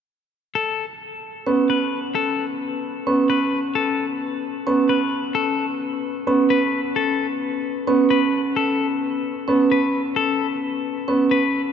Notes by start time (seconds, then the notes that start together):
0.55 A4
1.47 B3 C#4
1.70 B4
2.15 A4
3.07 B3 C#4
3.30 B4
3.75 A4
4.67 B3 C#4
4.89 B4
5.35 A4
6.27 B3 C#4
6.50 B4
6.96 A4
7.87 B3 C#4
8.10 B4
8.56 A4
9.48 B3 C#4
9.72 B4
10.16 A4
11.08 B3 C#4
11.31 B4